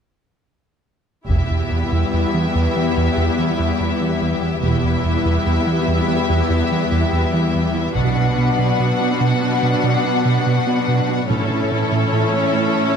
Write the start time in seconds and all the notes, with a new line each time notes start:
1.28 E1 E2 G3 B3 E4 G4 B4 E5, taiko
1.51 E2
1.72 E2
1.92 E2
2.14 E2
2.34 E3
2.55 E2
2.76 E3
2.97 E2
3.18 E2
3.39 E3
3.60 E2
3.80 E2
4.01 E3
4.22 E2
4.43 E3
4.63 E1 E2 G3 B3 E4 G4 B4 E5
4.84 E2
5.05 E2
5.26 E2
5.47 E2
5.67 E3
5.88 E2
6.08 E3
6.30 E2
6.50 E2
6.71 E3
6.92 E2
7.13 E2
7.34 E3
7.55 E2
7.75 E3
7.95 B1 B2 F#3 B3 D4 F#4 B4 F#5, taiko
8.17 B2
8.38 B2
8.59 B2
8.79 B2
9.01 B3
9.21 B2
9.42 B3
9.63 B2
9.84 B2
10.05 B3
10.25 B2
10.47 B2
10.67 B3
10.88 B2
11.09 B3
11.29 A1 A2 E3 C#4 E4 A4 C#5
11.51 A2
11.72 A2
11.92 A2
12.13 A2
12.33 A3
12.54 A2
12.76 A3